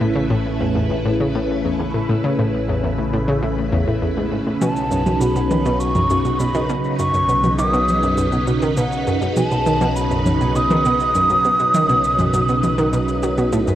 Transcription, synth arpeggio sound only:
0.01 0.05 A2 loud
0.16 0.27 C#3 loud
0.30 0.35 A2 loud
0.60 0.71 E2 medium
0.75 0.83 E2 medium
0.90 0.95 A2 medium
1.05 1.09 A2 loud
1.20 1.31 C#3 loud
1.35 1.39 A2 loud
1.65 1.75 E2 medium
1.80 1.87 E2 medium
1.94 1.99 A2 medium
2.09 2.13 A2 loud
2.24 2.35 C#3 loud
2.39 2.43 A2 loud
2.69 2.79 E2 medium
2.84 2.91 E2 medium
2.98 3.03 A2 medium
3.13 3.17 A2 loud
3.28 3.39 C#3 loud
3.43 3.47 A2 loud
3.72 3.83 E2 loud
3.88 3.98 A2 medium
4.02 4.09 E2 medium
4.17 4.24 G#2 medium
4.32 4.39 G#2 medium
4.47 4.51 A2 medium
4.62 4.66 B2 loud
4.91 5.02 F#2 medium
5.06 5.13 F#2 medium
5.21 5.25 B2 medium
5.36 5.40 B2 medium
5.51 5.62 D#3 loud
5.66 5.70 B2 loud
5.95 6.06 F#2 medium
6.10 6.17 F#2 medium
6.25 6.29 B2 medium
6.40 6.44 B2 medium
6.55 6.65 D#3 loud
6.69 6.74 B2 loud
6.99 7.10 F#2 medium
7.14 7.21 F#2 medium
7.29 7.33 B2 medium
7.44 7.48 B2 medium
7.58 7.69 D#3 loud
7.73 7.78 B2 loud
8.03 8.14 F#2 medium
8.18 8.25 F#2 medium
8.33 8.37 B2 medium
8.48 8.52 B2 medium
8.62 8.73 D#3 loud
8.77 8.82 B2 loud
9.07 9.18 F#2 medium
9.22 9.29 F#2 medium
9.37 9.41 B2 medium
9.52 9.56 B2 medium
9.66 9.77 D#3 medium
9.81 9.86 B2 loud
10.11 10.22 F#2 medium
10.26 10.33 F#2 medium
10.41 10.45 B2 medium
10.56 10.60 B2 medium
10.70 10.81 D#3 loud
10.85 10.90 B2 loud
11.15 11.26 F#2 medium
11.30 11.37 F#2 medium
11.45 11.49 B2 medium
11.60 11.64 B2 medium
11.74 11.85 D#3 loud
11.89 11.94 B2 loud
12.19 12.30 F#2 medium
12.34 12.41 F#2 medium
12.49 12.53 B2 medium
12.63 12.68 B2 medium
12.78 12.89 D#3 loud
12.93 12.97 B2 loud
13.23 13.34 F#3 medium
13.38 13.49 B2 loud
13.53 13.60 A2 loud
13.67 13.75 F#2 medium

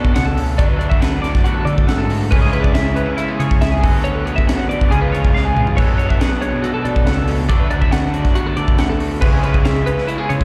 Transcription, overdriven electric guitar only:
0.00 0.57 B2 medium
0.00 0.57 F#3 medium
0.00 0.59 B3 medium
0.00 0.59 D4 loud
0.57 2.30 D3 medium
0.57 2.31 F#3 loud
0.57 2.31 A3 medium
0.57 2.32 D4 loud
2.31 3.81 C#3 loud
2.31 3.82 G#3 loud
2.31 3.84 C#4 loud
2.31 3.83 E4 loud
3.81 4.89 D3 medium
3.81 4.90 F#3 loud
3.81 4.92 B3 loud
3.86 4.91 F#4 loud
4.89 5.75 C#3 loud
4.89 5.76 G#3 loud
4.89 5.78 B3 medium
4.94 5.77 F4 loud
5.75 7.47 B2 medium
5.75 7.48 F#3 medium
5.75 7.51 B3 medium
5.80 7.49 D4 loud
7.49 9.20 D3 medium
7.49 9.21 F#3 medium
7.49 9.21 A3 loud
7.49 9.22 D4 medium
9.21 10.44 C#3 medium
9.21 10.44 G#3 loud
9.21 10.44 C#4 loud
9.21 10.44 E4 loud

